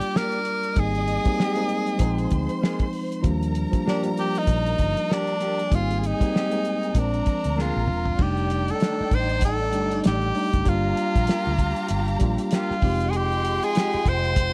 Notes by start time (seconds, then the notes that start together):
Already playing: G3 A#3 D4 F4 G4 D5 D6
0.01 closed hi-hat
0.14 A#3 D4 G4 A#4, snare
0.32 closed hi-hat
0.45 closed hi-hat
0.63 closed hi-hat
0.76 G#1 G3 A#3 C4 D#4 G#4 D#5 D#6, kick, closed hi-hat
0.95 closed hi-hat
1.08 closed hi-hat
1.24 G3 A#3 C4 D#4, muted fingered electric bass stroke, kick, closed hi-hat
1.38 G#3 C4 G4, snare
1.55 G#3 A#3 C4 D#4, closed hi-hat
1.69 closed hi-hat
1.87 closed hi-hat
1.98 A#1 F3 G#3 C4 D#4 C5 C6, kick, closed hi-hat
2.18 closed hi-hat
2.30 D2, kick, closed hi-hat
2.49 closed hi-hat
2.61 A#3 D#4 G#4, snare
2.79 kick, closed hi-hat
2.93 open hi-hat
3.12 closed hi-hat
3.23 D#2 F3 G3 A#3 D4 A#4 A#5, kick, closed hi-hat
3.43 closed hi-hat
3.55 closed hi-hat
3.72 F3 G3 A#3 D4, muted fingered electric bass stroke, kick, closed hi-hat
3.86 A#3 D4 G4, snare
4.03 F3 G3 A#3 D5, closed hi-hat
4.17 G4, closed hi-hat
4.35 D#4, closed hi-hat
4.47 A#1, kick, closed hi-hat
4.66 closed hi-hat
4.78 G1, kick, closed hi-hat
4.97 closed hi-hat
5.10 A#3 D4 G4, snare
5.27 closed hi-hat
5.40 A#3 D4 G4, closed hi-hat
5.59 closed hi-hat
5.71 G#1 G3 A#3 C4 D#4 G#4 G#5, kick, closed hi-hat
5.75 F4
5.91 closed hi-hat
6.00 F4, closed hi-hat
6.06 D#4
6.20 G3 A#3 C4 D#4, muted fingered electric bass stroke, kick, closed hi-hat
6.32 G#3 C4 G4, snare
6.50 G#3 A#3 C4 D#4, closed hi-hat
6.65 closed hi-hat
6.83 closed hi-hat
6.94 A#1 F3 G#3 C4 D4 A#4 A#5, kick, closed hi-hat
6.99 D4
7.14 closed hi-hat
7.26 muted fingered electric bass stroke, kick, closed hi-hat
7.44 D2, closed hi-hat
7.57 A#3 D4 G#4, snare
7.61 F4
7.76 A#1
7.88 E1, mid tom
8.05 floor tom
8.18 F1 G3 A3 D4 D#4 G4 D5 G5, kick, crash
8.37 closed hi-hat
8.50 closed hi-hat
8.68 A4, closed hi-hat
8.80 D#3 A3 D4, snare, closed hi-hat
9.01 muted fingered electric bass stroke
9.11 A1 C5, kick, closed hi-hat
9.29 closed hi-hat
9.41 A4, kick, closed hi-hat
9.72 G1 G3 A3 D4 D#4, closed hi-hat
9.91 closed hi-hat
10.04 A1 D#3 A3 D4 G4, snare, closed hi-hat
10.22 closed hi-hat
10.34 G3 A3 D4 D#4, open hi-hat
10.53 F#1, kick, closed hi-hat
10.65 G1 G3 A#3 D4 F4 G4 F5 A#5, kick, closed hi-hat
10.97 closed hi-hat
11.16 A#1, kick, closed hi-hat
11.27 A#3 F4 G4, snare, closed hi-hat
11.47 D2
11.58 kick, closed hi-hat
11.76 closed hi-hat
11.88 G1, closed hi-hat
12.08 closed hi-hat
12.19 A#1 G3 A#3 D4 F4, kick, closed hi-hat
12.38 closed hi-hat
12.51 A#3 F4 G4, snare, closed hi-hat
12.71 muted fingered electric bass stroke, snare
12.81 F1 G#3 C4 D#4 G4 G5 C6, kick, open hi-hat
13.00 closed hi-hat
13.10 F3 G#3 D#4 F4 G#4, closed hi-hat
13.17 G4
13.32 closed hi-hat
13.45 closed hi-hat
13.63 G#4, closed hi-hat
13.75 G#3 D#4 G4, snare, closed hi-hat
13.93 muted fingered electric bass stroke, closed hi-hat
14.06 F1 C5, kick, closed hi-hat
14.24 closed hi-hat
14.36 kick, closed hi-hat